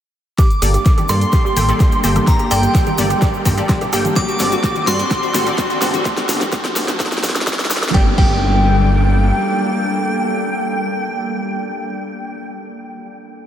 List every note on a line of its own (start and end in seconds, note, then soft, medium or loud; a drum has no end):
0.38 4.13 G3 medium
0.38 4.13 A#3 medium
0.38 4.13 D4 medium
0.38 0.48 G4 medium
0.38 2.25 A4 medium
0.38 1.11 D6 loud
0.38 1.09 D6 loud
0.38 kick loud
0.38 snare soft
0.38 closed hi-hat medium
0.38 riser medium
0.38 shaker medium
0.50 closed hi-hat soft
0.50 shaker soft
0.62 0.77 G1 loud
0.62 0.73 A#3 medium
0.62 0.69 G4 medium
0.62 0.73 G4 medium
0.62 0.73 A4 medium
0.62 0.73 D5 medium
0.62 open hi-hat loud
0.62 shaker medium
0.74 0.84 G4 medium
0.74 closed hi-hat medium
0.74 shaker soft
0.86 kick loud
0.86 snare soft
0.86 closed hi-hat medium
0.86 shaker medium
0.98 1.04 G4 medium
0.98 closed hi-hat soft
0.98 high conga medium
0.98 shaker soft
1.09 1.25 G2 medium
1.09 1.27 A#3 medium
1.09 1.19 G4 medium
1.09 1.27 G4 medium
1.09 1.27 A4 medium
1.09 1.27 D5 loud
1.09 2.23 C6 loud
1.09 open hi-hat medium
1.09 shaker medium
1.21 closed hi-hat medium
1.21 shaker soft
1.32 1.40 G4 medium
1.32 kick loud
1.32 snare soft
1.32 closed hi-hat medium
1.32 shaker medium
1.45 1.54 G4 medium
1.45 shaker soft
1.56 1.72 A1 medium
1.56 1.67 A#3 medium
1.56 1.67 G4 medium
1.56 1.67 A4 medium
1.56 1.67 G5 loud
1.56 open hi-hat loud
1.56 high conga medium
1.56 shaker loud
1.69 2.01 A#3 medium
1.69 2.01 G4 medium
1.69 1.75 G4 medium
1.69 2.01 A4 medium
1.69 2.01 D5 medium
1.69 closed hi-hat medium
1.69 shaker soft
1.80 1.90 G4 medium
1.80 kick loud
1.80 snare medium
1.80 closed hi-hat medium
1.80 shaker soft
1.92 closed hi-hat soft
1.92 shaker soft
2.04 2.19 G1 medium
2.04 2.22 A#3 loud
2.04 2.22 G4 medium
2.04 2.10 G4 medium
2.04 2.22 A4 medium
2.04 2.22 G5 loud
2.04 open hi-hat medium
2.04 high woodblock medium
2.04 shaker medium
2.16 2.25 G4 medium
2.16 cross-stick medium
2.16 closed hi-hat medium
2.16 high conga medium
2.16 shaker soft
2.27 4.14 G4 medium
2.27 2.52 A#5 loud
2.27 2.50 A#5 medium
2.27 kick loud
2.27 snare medium
2.27 closed hi-hat medium
2.27 shaker medium
2.39 2.46 G4 medium
2.39 closed hi-hat soft
2.39 shaker soft
2.51 2.66 G1 medium
2.51 2.62 A#3 medium
2.51 2.61 G4 medium
2.51 2.62 G4 medium
2.51 2.62 A4 medium
2.51 2.62 D5 medium
2.51 3.42 G5 medium
2.51 cross-stick medium
2.51 open hi-hat loud
2.51 high woodblock medium
2.51 shaker medium
2.63 closed hi-hat medium
2.63 shaker soft
2.75 2.81 G4 medium
2.75 kick loud
2.75 snare medium
2.75 closed hi-hat medium
2.75 shaker medium
2.86 2.96 G4 medium
2.86 closed hi-hat soft
2.86 high conga medium
2.86 shaker soft
2.98 3.14 G1 loud
2.98 3.16 A#3 medium
2.98 3.16 G4 medium
2.98 3.16 A4 medium
2.98 3.16 D5 loud
2.98 open hi-hat medium
2.98 shaker medium
3.10 3.17 G4 medium
3.10 closed hi-hat medium
3.10 shaker soft
3.22 3.32 G4 medium
3.22 kick loud
3.22 snare medium
3.22 closed hi-hat medium
3.22 shaker medium
3.34 shaker soft
3.45 3.61 G2 medium
3.45 3.56 A#3 medium
3.45 3.52 G4 medium
3.45 3.56 G4 medium
3.45 3.56 A4 medium
3.45 3.56 G5 loud
3.45 kick medium
3.45 open hi-hat loud
3.45 high conga medium
3.45 high woodblock medium
3.45 shaker loud
3.57 3.90 A#3 medium
3.57 3.90 G4 medium
3.57 3.67 G4 medium
3.57 3.90 A4 medium
3.57 3.90 D5 loud
3.57 closed hi-hat medium
3.57 shaker soft
3.69 kick loud
3.69 snare medium
3.69 closed hi-hat medium
3.69 high woodblock medium
3.69 shaker soft
3.81 3.88 G4 medium
3.81 closed hi-hat soft
3.81 low conga medium
3.81 shaker soft
3.93 4.08 G1 medium
3.93 4.11 A#3 loud
3.93 4.11 G4 medium
3.93 4.03 G4 medium
3.93 4.11 A4 medium
3.93 4.11 G5 loud
3.93 cross-stick medium
3.93 open hi-hat medium
3.93 shaker loud
4.05 closed hi-hat medium
4.05 high conga medium
4.05 shaker soft
4.16 6.04 C4 medium
4.16 6.04 D4 medium
4.16 4.23 F#4 medium
4.16 6.04 F#4 medium
4.16 4.89 D6 loud
4.16 4.87 D6 loud
4.16 kick loud
4.16 snare medium
4.16 closed hi-hat medium
4.16 shaker soft
4.28 4.38 F#4 medium
4.28 closed hi-hat soft
4.28 shaker soft
4.39 4.55 G1 loud
4.39 4.51 C4 medium
4.39 4.51 F#4 medium
4.39 4.51 A4 medium
4.39 4.51 D5 medium
4.39 snare medium
4.39 open hi-hat loud
4.39 shaker medium
4.52 4.58 F#4 medium
4.52 closed hi-hat medium
4.52 shaker soft
4.64 4.73 F#4 medium
4.64 kick loud
4.64 snare medium
4.64 closed hi-hat medium
4.64 shaker medium
4.75 closed hi-hat soft
4.75 high conga medium
4.75 shaker soft
4.87 5.03 G2 loud
4.87 5.05 C4 medium
4.87 5.05 F#4 medium
4.87 4.94 F#4 medium
4.87 5.05 A4 medium
4.87 5.05 D5 loud
4.87 6.01 C6 loud
4.87 snare medium
4.87 open hi-hat medium
4.87 shaker loud
4.99 5.09 F#4 medium
4.99 closed hi-hat medium
4.99 shaker soft
5.11 kick loud
5.11 snare medium
5.11 closed hi-hat medium
5.11 shaker medium
5.23 5.29 F#4 medium
5.23 shaker soft
5.34 5.50 A1 medium
5.34 5.45 C4 medium
5.34 5.45 F#4 medium
5.34 5.44 F#4 medium
5.34 5.45 A4 medium
5.34 5.45 F#5 loud
5.34 snare medium
5.34 open hi-hat loud
5.34 high conga medium
5.34 shaker loud
5.46 5.79 C4 medium
5.46 5.79 F#4 medium
5.46 5.79 A4 medium
5.46 5.79 D5 loud
5.46 closed hi-hat soft
5.46 shaker soft
5.58 5.65 F#4 medium
5.58 kick loud
5.58 snare medium
5.58 closed hi-hat medium
5.58 shaker medium
5.70 5.80 F#4 medium
5.70 closed hi-hat soft
5.70 shaker soft
5.82 5.97 G1 medium
5.82 6.00 C4 medium
5.82 6.00 F#4 medium
5.82 6.00 A4 medium
5.82 6.00 F#5 loud
5.82 snare medium
5.82 open hi-hat loud
5.82 high woodblock medium
5.82 shaker medium
5.94 6.00 F#4 medium
5.94 closed hi-hat medium
5.94 high conga medium
5.94 shaker soft
6.05 kick loud
6.05 snare medium
6.05 closed hi-hat medium
6.05 shaker medium
6.17 snare medium
6.17 closed hi-hat soft
6.17 shaker soft
6.29 6.44 G1 medium
6.29 snare loud
6.29 open hi-hat loud
6.29 shaker loud
6.41 snare medium
6.41 closed hi-hat soft
6.41 shaker soft
6.52 kick loud
6.52 snare medium
6.52 closed hi-hat medium
6.52 shaker medium
6.65 snare medium
6.65 closed hi-hat soft
6.65 shaker soft
6.76 6.92 G1 loud
6.76 snare medium
6.76 open hi-hat loud
6.76 shaker loud
6.88 snare medium
6.88 closed hi-hat medium
6.88 shaker soft
7.00 kick loud
7.00 snare loud
7.00 closed hi-hat medium
7.00 shaker medium
7.06 snare medium
7.12 snare medium
7.12 shaker soft
7.18 snare medium
7.23 7.39 G2 medium
7.23 kick medium
7.23 snare loud
7.23 open hi-hat loud
7.23 shaker loud
7.30 snare medium
7.36 snare medium
7.36 closed hi-hat medium
7.36 shaker soft
7.41 snare loud
7.47 kick loud
7.47 snare loud
7.47 closed hi-hat medium
7.47 shaker medium
7.53 snare loud
7.59 snare loud
7.59 closed hi-hat soft
7.59 shaker soft
7.65 snare loud
7.70 7.86 G1 medium
7.70 snare loud
7.70 open hi-hat medium
7.70 shaker loud
7.77 snare medium
7.83 snare loud
7.83 closed hi-hat medium
7.83 shaker soft
7.89 snare loud
7.94 8.08 G1 loud
7.94 12.23 G3 medium
7.94 12.23 A#3 medium
7.94 8.08 A#3 medium
7.94 12.23 D4 medium
7.94 8.08 G4 medium
7.94 8.08 A4 medium
7.94 12.23 A4 medium
7.94 8.08 D5 loud
7.94 8.08 G5 medium
7.94 kick loud
7.94 snare medium
8.18 9.32 G1 loud
8.18 12.46 A#3 medium
8.18 8.31 G4 loud
8.18 12.46 G4 medium
8.18 12.46 A4 medium
8.18 12.46 D5 loud
8.18 12.46 G5 medium
8.18 kick loud
8.18 crash medium